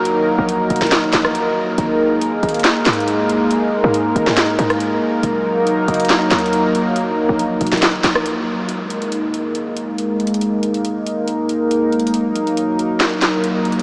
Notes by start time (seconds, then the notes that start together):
Already playing: D#2 F#3 A#3 D#4 A#4
0.05 closed hi-hat
0.38 A#1
0.49 closed hi-hat
0.70 D#1, closed hi-hat
0.76 closed hi-hat
0.82 D#1, snare, closed hi-hat
0.87 closed hi-hat
0.92 snare, clap, closed hi-hat
1.03 A#1
1.13 A#1, snare, clap, closed hi-hat
1.25 cross-stick
1.35 closed hi-hat
1.78 G#1 G#3 A#3, closed hi-hat
2.21 closed hi-hat
2.43 G#1, closed hi-hat
2.49 closed hi-hat
2.54 closed hi-hat
2.59 closed hi-hat
2.64 snare, clap, closed hi-hat
2.86 G#2, snare, clap, closed hi-hat
2.93 closed hi-hat
3.00 closed hi-hat
3.08 closed hi-hat
3.29 closed hi-hat
3.51 closed hi-hat
3.84 G#2
3.94 closed hi-hat
4.16 G#1, closed hi-hat
4.27 G#2, snare
4.37 snare, clap, closed hi-hat
4.59 G#2, closed hi-hat
4.70 cross-stick, closed hi-hat
4.80 closed hi-hat
5.23 D#1 F#3 A#3 D#4 A#4, closed hi-hat
5.67 F#1, closed hi-hat
5.88 F#1, closed hi-hat
5.94 closed hi-hat
6.00 closed hi-hat
6.05 closed hi-hat
6.10 snare, clap, closed hi-hat
6.31 D#2, snare, clap, closed hi-hat
6.39 closed hi-hat
6.46 closed hi-hat
6.53 closed hi-hat
6.75 closed hi-hat
6.96 closed hi-hat
7.29 A#1
7.39 closed hi-hat
7.61 D#1, closed hi-hat
7.67 closed hi-hat
7.72 D#1, snare, closed hi-hat
7.77 closed hi-hat
7.82 snare, clap, closed hi-hat
7.94 A#1
8.04 A#1, snare, clap, closed hi-hat
8.15 cross-stick
8.26 closed hi-hat
8.69 G#3 A#3 D#4 A#4, closed hi-hat
8.90 closed hi-hat
9.02 closed hi-hat
9.12 closed hi-hat
9.34 closed hi-hat
9.55 closed hi-hat
9.77 closed hi-hat
9.98 closed hi-hat
10.20 closed hi-hat
10.27 closed hi-hat
10.34 closed hi-hat
10.41 closed hi-hat
10.63 closed hi-hat
10.74 closed hi-hat
10.85 closed hi-hat
11.06 closed hi-hat
11.28 closed hi-hat
11.49 closed hi-hat
11.71 closed hi-hat
11.92 closed hi-hat
12.00 closed hi-hat
12.07 closed hi-hat
12.14 F#3, closed hi-hat
12.36 closed hi-hat
12.47 closed hi-hat
12.57 closed hi-hat
12.79 closed hi-hat
13.00 snare, clap, closed hi-hat
13.22 snare, clap, closed hi-hat
13.44 closed hi-hat
13.65 closed hi-hat
13.72 closed hi-hat
13.80 closed hi-hat